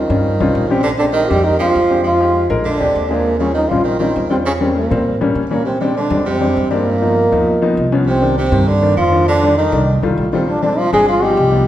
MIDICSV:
0, 0, Header, 1, 5, 480
1, 0, Start_track
1, 0, Tempo, 300752
1, 1357, Time_signature, 4, 2, 24, 8
1, 18633, End_track
2, 0, Start_track
2, 0, Title_t, "Trombone"
2, 0, Program_c, 0, 57
2, 0, Note_on_c, 0, 63, 86
2, 1095, Note_on_c, 0, 60, 97
2, 1119, Note_off_c, 0, 63, 0
2, 1325, Note_off_c, 0, 60, 0
2, 1335, Note_on_c, 0, 62, 84
2, 1448, Note_off_c, 0, 62, 0
2, 1567, Note_on_c, 0, 62, 96
2, 1682, Note_off_c, 0, 62, 0
2, 1811, Note_on_c, 0, 63, 91
2, 2033, Note_on_c, 0, 67, 100
2, 2057, Note_off_c, 0, 63, 0
2, 2301, Note_on_c, 0, 63, 96
2, 2325, Note_off_c, 0, 67, 0
2, 2532, Note_off_c, 0, 63, 0
2, 2541, Note_on_c, 0, 65, 102
2, 3218, Note_off_c, 0, 65, 0
2, 3262, Note_on_c, 0, 65, 102
2, 3938, Note_off_c, 0, 65, 0
2, 4217, Note_on_c, 0, 62, 85
2, 4937, Note_on_c, 0, 58, 85
2, 4961, Note_off_c, 0, 62, 0
2, 5405, Note_off_c, 0, 58, 0
2, 5415, Note_on_c, 0, 61, 87
2, 5648, Note_off_c, 0, 61, 0
2, 5658, Note_on_c, 0, 63, 93
2, 5885, Note_on_c, 0, 65, 98
2, 5909, Note_off_c, 0, 63, 0
2, 6141, Note_off_c, 0, 65, 0
2, 6151, Note_on_c, 0, 63, 77
2, 6371, Note_off_c, 0, 63, 0
2, 6381, Note_on_c, 0, 63, 78
2, 6835, Note_off_c, 0, 63, 0
2, 6867, Note_on_c, 0, 60, 85
2, 6977, Note_off_c, 0, 60, 0
2, 7112, Note_on_c, 0, 61, 90
2, 7221, Note_off_c, 0, 61, 0
2, 7366, Note_on_c, 0, 60, 77
2, 7585, Note_off_c, 0, 60, 0
2, 7611, Note_on_c, 0, 58, 72
2, 8319, Note_off_c, 0, 58, 0
2, 8807, Note_on_c, 0, 58, 85
2, 9022, Note_off_c, 0, 58, 0
2, 9032, Note_on_c, 0, 60, 80
2, 9258, Note_off_c, 0, 60, 0
2, 9279, Note_on_c, 0, 60, 91
2, 9502, Note_off_c, 0, 60, 0
2, 9527, Note_on_c, 0, 62, 86
2, 9969, Note_off_c, 0, 62, 0
2, 10010, Note_on_c, 0, 60, 84
2, 10674, Note_off_c, 0, 60, 0
2, 10722, Note_on_c, 0, 58, 99
2, 12576, Note_off_c, 0, 58, 0
2, 12908, Note_on_c, 0, 60, 91
2, 13341, Note_off_c, 0, 60, 0
2, 13388, Note_on_c, 0, 60, 81
2, 13854, Note_on_c, 0, 62, 83
2, 13878, Note_off_c, 0, 60, 0
2, 14317, Note_off_c, 0, 62, 0
2, 14326, Note_on_c, 0, 65, 105
2, 14769, Note_off_c, 0, 65, 0
2, 14805, Note_on_c, 0, 62, 110
2, 15248, Note_off_c, 0, 62, 0
2, 15277, Note_on_c, 0, 63, 90
2, 15991, Note_off_c, 0, 63, 0
2, 16483, Note_on_c, 0, 60, 82
2, 16729, Note_on_c, 0, 62, 96
2, 16753, Note_off_c, 0, 60, 0
2, 16963, Note_off_c, 0, 62, 0
2, 16986, Note_on_c, 0, 62, 99
2, 17216, Note_on_c, 0, 65, 107
2, 17240, Note_off_c, 0, 62, 0
2, 17440, Note_off_c, 0, 65, 0
2, 17450, Note_on_c, 0, 68, 107
2, 17667, Note_off_c, 0, 68, 0
2, 17695, Note_on_c, 0, 65, 108
2, 17934, Note_on_c, 0, 67, 94
2, 17958, Note_off_c, 0, 65, 0
2, 18633, Note_off_c, 0, 67, 0
2, 18633, End_track
3, 0, Start_track
3, 0, Title_t, "Grand piano"
3, 0, Program_c, 1, 0
3, 157, Note_on_c, 1, 55, 73
3, 158, Note_on_c, 1, 60, 66
3, 161, Note_on_c, 1, 61, 71
3, 165, Note_on_c, 1, 65, 86
3, 493, Note_off_c, 1, 55, 0
3, 494, Note_off_c, 1, 60, 0
3, 495, Note_off_c, 1, 61, 0
3, 497, Note_off_c, 1, 65, 0
3, 642, Note_on_c, 1, 55, 88
3, 643, Note_on_c, 1, 60, 83
3, 647, Note_on_c, 1, 61, 89
3, 647, Note_on_c, 1, 65, 108
3, 976, Note_off_c, 1, 55, 0
3, 976, Note_off_c, 1, 60, 0
3, 978, Note_off_c, 1, 61, 0
3, 978, Note_off_c, 1, 65, 0
3, 1120, Note_on_c, 1, 55, 78
3, 1124, Note_on_c, 1, 60, 75
3, 1126, Note_on_c, 1, 61, 72
3, 1132, Note_on_c, 1, 67, 91
3, 1359, Note_off_c, 1, 55, 0
3, 1361, Note_off_c, 1, 60, 0
3, 1362, Note_off_c, 1, 61, 0
3, 1365, Note_off_c, 1, 67, 0
3, 1592, Note_on_c, 1, 56, 73
3, 1594, Note_on_c, 1, 60, 72
3, 1596, Note_on_c, 1, 62, 67
3, 1597, Note_on_c, 1, 67, 76
3, 1931, Note_off_c, 1, 56, 0
3, 1932, Note_off_c, 1, 60, 0
3, 1933, Note_off_c, 1, 62, 0
3, 1933, Note_off_c, 1, 67, 0
3, 2066, Note_on_c, 1, 60, 70
3, 2069, Note_on_c, 1, 62, 65
3, 2073, Note_on_c, 1, 56, 78
3, 2075, Note_on_c, 1, 67, 78
3, 2408, Note_off_c, 1, 60, 0
3, 2409, Note_off_c, 1, 62, 0
3, 2411, Note_off_c, 1, 56, 0
3, 2412, Note_off_c, 1, 67, 0
3, 2553, Note_on_c, 1, 56, 76
3, 2555, Note_on_c, 1, 60, 68
3, 2562, Note_on_c, 1, 62, 72
3, 2566, Note_on_c, 1, 67, 90
3, 2891, Note_off_c, 1, 56, 0
3, 2892, Note_off_c, 1, 60, 0
3, 2895, Note_off_c, 1, 62, 0
3, 2897, Note_off_c, 1, 67, 0
3, 3040, Note_on_c, 1, 60, 69
3, 3042, Note_on_c, 1, 62, 70
3, 3043, Note_on_c, 1, 56, 78
3, 3045, Note_on_c, 1, 67, 86
3, 3279, Note_off_c, 1, 60, 0
3, 3280, Note_off_c, 1, 56, 0
3, 3280, Note_off_c, 1, 62, 0
3, 3281, Note_off_c, 1, 67, 0
3, 3515, Note_on_c, 1, 56, 73
3, 3520, Note_on_c, 1, 63, 70
3, 3522, Note_on_c, 1, 67, 83
3, 3852, Note_off_c, 1, 56, 0
3, 3854, Note_off_c, 1, 63, 0
3, 3855, Note_off_c, 1, 67, 0
3, 3990, Note_on_c, 1, 56, 96
3, 3994, Note_on_c, 1, 70, 108
3, 3999, Note_on_c, 1, 63, 80
3, 4234, Note_off_c, 1, 56, 0
3, 4236, Note_off_c, 1, 70, 0
3, 4238, Note_off_c, 1, 63, 0
3, 4469, Note_on_c, 1, 56, 76
3, 4471, Note_on_c, 1, 60, 62
3, 4478, Note_on_c, 1, 62, 76
3, 4478, Note_on_c, 1, 67, 93
3, 4809, Note_off_c, 1, 56, 0
3, 4810, Note_off_c, 1, 60, 0
3, 4814, Note_off_c, 1, 62, 0
3, 4814, Note_off_c, 1, 67, 0
3, 4956, Note_on_c, 1, 60, 71
3, 4958, Note_on_c, 1, 56, 75
3, 4958, Note_on_c, 1, 62, 76
3, 4959, Note_on_c, 1, 68, 86
3, 5197, Note_off_c, 1, 56, 0
3, 5197, Note_off_c, 1, 60, 0
3, 5198, Note_off_c, 1, 62, 0
3, 5198, Note_off_c, 1, 68, 0
3, 5428, Note_on_c, 1, 55, 65
3, 5434, Note_on_c, 1, 60, 60
3, 5434, Note_on_c, 1, 65, 78
3, 5437, Note_on_c, 1, 61, 60
3, 5769, Note_off_c, 1, 55, 0
3, 5771, Note_off_c, 1, 65, 0
3, 5772, Note_off_c, 1, 60, 0
3, 5773, Note_off_c, 1, 61, 0
3, 5917, Note_on_c, 1, 55, 77
3, 5925, Note_on_c, 1, 60, 67
3, 5928, Note_on_c, 1, 61, 70
3, 5930, Note_on_c, 1, 65, 87
3, 6253, Note_off_c, 1, 55, 0
3, 6257, Note_off_c, 1, 60, 0
3, 6259, Note_off_c, 1, 61, 0
3, 6260, Note_off_c, 1, 65, 0
3, 6378, Note_on_c, 1, 60, 70
3, 6383, Note_on_c, 1, 61, 73
3, 6383, Note_on_c, 1, 65, 80
3, 6386, Note_on_c, 1, 55, 81
3, 6724, Note_off_c, 1, 60, 0
3, 6726, Note_off_c, 1, 61, 0
3, 6726, Note_off_c, 1, 65, 0
3, 6728, Note_off_c, 1, 55, 0
3, 6865, Note_on_c, 1, 55, 80
3, 6870, Note_on_c, 1, 61, 68
3, 6871, Note_on_c, 1, 60, 75
3, 6874, Note_on_c, 1, 65, 84
3, 7111, Note_off_c, 1, 55, 0
3, 7114, Note_off_c, 1, 60, 0
3, 7114, Note_off_c, 1, 61, 0
3, 7116, Note_off_c, 1, 65, 0
3, 7351, Note_on_c, 1, 55, 74
3, 7352, Note_on_c, 1, 58, 72
3, 7355, Note_on_c, 1, 61, 84
3, 7690, Note_off_c, 1, 55, 0
3, 7691, Note_off_c, 1, 58, 0
3, 7692, Note_off_c, 1, 61, 0
3, 7829, Note_on_c, 1, 55, 74
3, 7830, Note_on_c, 1, 58, 64
3, 7838, Note_on_c, 1, 60, 92
3, 8169, Note_off_c, 1, 55, 0
3, 8170, Note_off_c, 1, 58, 0
3, 8174, Note_off_c, 1, 60, 0
3, 8315, Note_on_c, 1, 58, 86
3, 8316, Note_on_c, 1, 55, 97
3, 8326, Note_on_c, 1, 61, 99
3, 8653, Note_off_c, 1, 55, 0
3, 8653, Note_off_c, 1, 58, 0
3, 8658, Note_off_c, 1, 61, 0
3, 8791, Note_on_c, 1, 58, 79
3, 8792, Note_on_c, 1, 55, 77
3, 8801, Note_on_c, 1, 61, 88
3, 9035, Note_off_c, 1, 55, 0
3, 9035, Note_off_c, 1, 58, 0
3, 9040, Note_off_c, 1, 61, 0
3, 9270, Note_on_c, 1, 55, 70
3, 9277, Note_on_c, 1, 60, 69
3, 9280, Note_on_c, 1, 56, 64
3, 9284, Note_on_c, 1, 62, 85
3, 9610, Note_off_c, 1, 55, 0
3, 9614, Note_off_c, 1, 60, 0
3, 9615, Note_off_c, 1, 56, 0
3, 9617, Note_off_c, 1, 62, 0
3, 9749, Note_on_c, 1, 55, 84
3, 9749, Note_on_c, 1, 56, 71
3, 9756, Note_on_c, 1, 60, 74
3, 9762, Note_on_c, 1, 62, 89
3, 10089, Note_off_c, 1, 55, 0
3, 10090, Note_off_c, 1, 56, 0
3, 10093, Note_off_c, 1, 60, 0
3, 10096, Note_off_c, 1, 62, 0
3, 10223, Note_on_c, 1, 56, 72
3, 10224, Note_on_c, 1, 55, 75
3, 10236, Note_on_c, 1, 62, 78
3, 10237, Note_on_c, 1, 60, 71
3, 10566, Note_off_c, 1, 56, 0
3, 10567, Note_off_c, 1, 55, 0
3, 10573, Note_off_c, 1, 62, 0
3, 10574, Note_off_c, 1, 60, 0
3, 10704, Note_on_c, 1, 55, 80
3, 10704, Note_on_c, 1, 56, 80
3, 10710, Note_on_c, 1, 62, 88
3, 10711, Note_on_c, 1, 60, 74
3, 10951, Note_off_c, 1, 55, 0
3, 10951, Note_off_c, 1, 56, 0
3, 10954, Note_off_c, 1, 60, 0
3, 10954, Note_off_c, 1, 62, 0
3, 11194, Note_on_c, 1, 53, 75
3, 11198, Note_on_c, 1, 59, 69
3, 11204, Note_on_c, 1, 63, 83
3, 11532, Note_off_c, 1, 53, 0
3, 11534, Note_off_c, 1, 59, 0
3, 11537, Note_off_c, 1, 63, 0
3, 11680, Note_on_c, 1, 59, 75
3, 11681, Note_on_c, 1, 53, 92
3, 11691, Note_on_c, 1, 63, 94
3, 12015, Note_off_c, 1, 53, 0
3, 12015, Note_off_c, 1, 59, 0
3, 12020, Note_off_c, 1, 63, 0
3, 12157, Note_on_c, 1, 53, 98
3, 12167, Note_on_c, 1, 63, 104
3, 12168, Note_on_c, 1, 59, 82
3, 12493, Note_off_c, 1, 53, 0
3, 12499, Note_off_c, 1, 59, 0
3, 12499, Note_off_c, 1, 63, 0
3, 12645, Note_on_c, 1, 61, 100
3, 12648, Note_on_c, 1, 53, 100
3, 12649, Note_on_c, 1, 59, 89
3, 12882, Note_off_c, 1, 61, 0
3, 12883, Note_off_c, 1, 53, 0
3, 12883, Note_off_c, 1, 59, 0
3, 13121, Note_on_c, 1, 51, 69
3, 13126, Note_on_c, 1, 58, 65
3, 13127, Note_on_c, 1, 62, 78
3, 13455, Note_off_c, 1, 51, 0
3, 13458, Note_off_c, 1, 58, 0
3, 13459, Note_off_c, 1, 62, 0
3, 13594, Note_on_c, 1, 51, 74
3, 13595, Note_on_c, 1, 58, 70
3, 13598, Note_on_c, 1, 60, 82
3, 13932, Note_off_c, 1, 51, 0
3, 13932, Note_off_c, 1, 58, 0
3, 13934, Note_off_c, 1, 60, 0
3, 14076, Note_on_c, 1, 51, 79
3, 14079, Note_on_c, 1, 58, 69
3, 14089, Note_on_c, 1, 62, 81
3, 14413, Note_off_c, 1, 51, 0
3, 14414, Note_off_c, 1, 58, 0
3, 14419, Note_off_c, 1, 62, 0
3, 14548, Note_on_c, 1, 51, 79
3, 14555, Note_on_c, 1, 58, 72
3, 14563, Note_on_c, 1, 62, 89
3, 14793, Note_off_c, 1, 51, 0
3, 14796, Note_off_c, 1, 58, 0
3, 14800, Note_off_c, 1, 62, 0
3, 15049, Note_on_c, 1, 55, 73
3, 15050, Note_on_c, 1, 51, 68
3, 15052, Note_on_c, 1, 57, 64
3, 15053, Note_on_c, 1, 62, 78
3, 15379, Note_off_c, 1, 55, 0
3, 15380, Note_off_c, 1, 51, 0
3, 15381, Note_off_c, 1, 57, 0
3, 15381, Note_off_c, 1, 62, 0
3, 15519, Note_on_c, 1, 55, 64
3, 15520, Note_on_c, 1, 62, 82
3, 15522, Note_on_c, 1, 51, 70
3, 15522, Note_on_c, 1, 57, 69
3, 15854, Note_off_c, 1, 55, 0
3, 15854, Note_off_c, 1, 62, 0
3, 15855, Note_off_c, 1, 51, 0
3, 15856, Note_off_c, 1, 57, 0
3, 16003, Note_on_c, 1, 51, 87
3, 16011, Note_on_c, 1, 55, 86
3, 16011, Note_on_c, 1, 57, 94
3, 16014, Note_on_c, 1, 65, 105
3, 16336, Note_off_c, 1, 51, 0
3, 16340, Note_off_c, 1, 55, 0
3, 16340, Note_off_c, 1, 57, 0
3, 16342, Note_off_c, 1, 65, 0
3, 16481, Note_on_c, 1, 51, 77
3, 16484, Note_on_c, 1, 57, 77
3, 16487, Note_on_c, 1, 55, 80
3, 16487, Note_on_c, 1, 65, 94
3, 16719, Note_off_c, 1, 51, 0
3, 16720, Note_off_c, 1, 57, 0
3, 16722, Note_off_c, 1, 55, 0
3, 16722, Note_off_c, 1, 65, 0
3, 16955, Note_on_c, 1, 55, 75
3, 16962, Note_on_c, 1, 56, 61
3, 16964, Note_on_c, 1, 60, 76
3, 16967, Note_on_c, 1, 62, 78
3, 17292, Note_off_c, 1, 55, 0
3, 17295, Note_off_c, 1, 56, 0
3, 17296, Note_off_c, 1, 60, 0
3, 17298, Note_off_c, 1, 62, 0
3, 17438, Note_on_c, 1, 56, 73
3, 17439, Note_on_c, 1, 55, 81
3, 17439, Note_on_c, 1, 60, 72
3, 17447, Note_on_c, 1, 62, 89
3, 17677, Note_off_c, 1, 56, 0
3, 17677, Note_off_c, 1, 60, 0
3, 17678, Note_off_c, 1, 55, 0
3, 17682, Note_off_c, 1, 62, 0
3, 17904, Note_on_c, 1, 53, 75
3, 17913, Note_on_c, 1, 59, 68
3, 17917, Note_on_c, 1, 63, 96
3, 18246, Note_off_c, 1, 53, 0
3, 18250, Note_off_c, 1, 59, 0
3, 18253, Note_off_c, 1, 63, 0
3, 18382, Note_on_c, 1, 53, 77
3, 18384, Note_on_c, 1, 59, 78
3, 18384, Note_on_c, 1, 63, 85
3, 18629, Note_off_c, 1, 53, 0
3, 18630, Note_off_c, 1, 59, 0
3, 18630, Note_off_c, 1, 63, 0
3, 18633, End_track
4, 0, Start_track
4, 0, Title_t, "Tenor saxophone"
4, 0, Program_c, 2, 66
4, 0, Note_on_c, 2, 51, 81
4, 1100, Note_on_c, 2, 48, 78
4, 1124, Note_off_c, 2, 51, 0
4, 1319, Note_off_c, 2, 48, 0
4, 1329, Note_on_c, 2, 50, 87
4, 1443, Note_off_c, 2, 50, 0
4, 1577, Note_on_c, 2, 50, 75
4, 1690, Note_off_c, 2, 50, 0
4, 1800, Note_on_c, 2, 51, 97
4, 2069, Note_on_c, 2, 55, 92
4, 2093, Note_off_c, 2, 51, 0
4, 2304, Note_on_c, 2, 51, 92
4, 2328, Note_off_c, 2, 55, 0
4, 2534, Note_off_c, 2, 51, 0
4, 2544, Note_on_c, 2, 53, 95
4, 3220, Note_off_c, 2, 53, 0
4, 3253, Note_on_c, 2, 53, 81
4, 3934, Note_off_c, 2, 53, 0
4, 4230, Note_on_c, 2, 50, 87
4, 4941, Note_on_c, 2, 46, 74
4, 4965, Note_off_c, 2, 50, 0
4, 5413, Note_off_c, 2, 46, 0
4, 5422, Note_on_c, 2, 49, 73
4, 5643, Note_off_c, 2, 49, 0
4, 5653, Note_on_c, 2, 51, 80
4, 5884, Note_on_c, 2, 53, 75
4, 5908, Note_off_c, 2, 51, 0
4, 6114, Note_off_c, 2, 53, 0
4, 6123, Note_on_c, 2, 51, 87
4, 6362, Note_off_c, 2, 51, 0
4, 6370, Note_on_c, 2, 51, 78
4, 6829, Note_off_c, 2, 51, 0
4, 6861, Note_on_c, 2, 48, 61
4, 6972, Note_off_c, 2, 48, 0
4, 7116, Note_on_c, 2, 49, 79
4, 7224, Note_off_c, 2, 49, 0
4, 7337, Note_on_c, 2, 48, 61
4, 7549, Note_off_c, 2, 48, 0
4, 7559, Note_on_c, 2, 46, 61
4, 8291, Note_off_c, 2, 46, 0
4, 8771, Note_on_c, 2, 46, 65
4, 9007, Note_off_c, 2, 46, 0
4, 9027, Note_on_c, 2, 48, 71
4, 9251, Note_off_c, 2, 48, 0
4, 9260, Note_on_c, 2, 48, 64
4, 9492, Note_off_c, 2, 48, 0
4, 9525, Note_on_c, 2, 50, 80
4, 9968, Note_off_c, 2, 50, 0
4, 9982, Note_on_c, 2, 48, 86
4, 10659, Note_off_c, 2, 48, 0
4, 10706, Note_on_c, 2, 46, 75
4, 12568, Note_off_c, 2, 46, 0
4, 12864, Note_on_c, 2, 48, 82
4, 13317, Note_off_c, 2, 48, 0
4, 13370, Note_on_c, 2, 48, 86
4, 13854, Note_on_c, 2, 50, 94
4, 13878, Note_off_c, 2, 48, 0
4, 14302, Note_off_c, 2, 50, 0
4, 14311, Note_on_c, 2, 53, 83
4, 14761, Note_off_c, 2, 53, 0
4, 14816, Note_on_c, 2, 50, 90
4, 15254, Note_off_c, 2, 50, 0
4, 15292, Note_on_c, 2, 51, 82
4, 15999, Note_off_c, 2, 51, 0
4, 16490, Note_on_c, 2, 48, 74
4, 16706, Note_on_c, 2, 50, 82
4, 16730, Note_off_c, 2, 48, 0
4, 16940, Note_off_c, 2, 50, 0
4, 16949, Note_on_c, 2, 50, 79
4, 17185, Note_on_c, 2, 53, 92
4, 17209, Note_off_c, 2, 50, 0
4, 17431, Note_off_c, 2, 53, 0
4, 17452, Note_on_c, 2, 56, 89
4, 17668, Note_off_c, 2, 56, 0
4, 17684, Note_on_c, 2, 53, 83
4, 17908, Note_on_c, 2, 55, 92
4, 17932, Note_off_c, 2, 53, 0
4, 18632, Note_off_c, 2, 55, 0
4, 18633, End_track
5, 0, Start_track
5, 0, Title_t, "Upright bass"
5, 0, Program_c, 3, 32
5, 155, Note_on_c, 3, 43, 89
5, 603, Note_off_c, 3, 43, 0
5, 642, Note_on_c, 3, 36, 74
5, 863, Note_off_c, 3, 36, 0
5, 877, Note_on_c, 3, 34, 94
5, 1989, Note_off_c, 3, 34, 0
5, 2084, Note_on_c, 3, 41, 92
5, 2750, Note_off_c, 3, 41, 0
5, 2802, Note_on_c, 3, 41, 89
5, 3912, Note_off_c, 3, 41, 0
5, 3986, Note_on_c, 3, 34, 90
5, 4437, Note_off_c, 3, 34, 0
5, 4478, Note_on_c, 3, 38, 67
5, 4701, Note_off_c, 3, 38, 0
5, 4716, Note_on_c, 3, 39, 92
5, 5829, Note_off_c, 3, 39, 0
5, 5922, Note_on_c, 3, 34, 80
5, 6590, Note_off_c, 3, 34, 0
5, 6638, Note_on_c, 3, 40, 88
5, 7750, Note_off_c, 3, 40, 0
5, 7839, Note_on_c, 3, 46, 93
5, 8285, Note_off_c, 3, 46, 0
5, 8314, Note_on_c, 3, 45, 70
5, 8534, Note_off_c, 3, 45, 0
5, 8544, Note_on_c, 3, 46, 87
5, 9663, Note_off_c, 3, 46, 0
5, 9740, Note_on_c, 3, 41, 98
5, 10418, Note_off_c, 3, 41, 0
5, 10481, Note_on_c, 3, 43, 88
5, 11592, Note_off_c, 3, 43, 0
5, 11684, Note_on_c, 3, 39, 81
5, 12351, Note_off_c, 3, 39, 0
5, 12404, Note_on_c, 3, 36, 87
5, 13513, Note_off_c, 3, 36, 0
5, 13594, Note_on_c, 3, 43, 93
5, 14265, Note_off_c, 3, 43, 0
5, 14318, Note_on_c, 3, 41, 93
5, 15430, Note_off_c, 3, 41, 0
5, 15515, Note_on_c, 3, 36, 92
5, 15963, Note_off_c, 3, 36, 0
5, 15998, Note_on_c, 3, 36, 71
5, 16221, Note_off_c, 3, 36, 0
5, 16238, Note_on_c, 3, 34, 81
5, 17349, Note_off_c, 3, 34, 0
5, 17439, Note_on_c, 3, 31, 91
5, 18107, Note_off_c, 3, 31, 0
5, 18147, Note_on_c, 3, 36, 94
5, 18598, Note_off_c, 3, 36, 0
5, 18633, End_track
0, 0, End_of_file